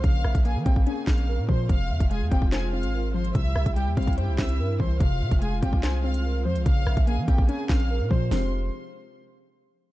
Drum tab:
HH |x-----x-x---x---x---x-x---------|x-----x-x---x---x-----x-------x-|x-----x-x---xxxxx---x-x---------|x-----x-x---x---x-----x-------x-|
CP |--------------------x-----------|----------------x---------------|--------------------x-----------|----------------x---------------|
SD |----r---------------o-----------|----------------o---------------|----r---------------o-----------|----------------o---------------|
BD |o-----o-----o-o-----o-------o---|o-----o-----o-o-----------------|o-----o-----o-o-----o-------o---|o-----o-----o-o-----------------|

HH |x-----x-x---x---x---x-x---------|o-------------------------------|
CP |--------------------x-----------|--------------------------------|
SD |----r---------------o-----------|o-------------------------------|
BD |o-----o-----o-o-----o-------o---|--------------------------------|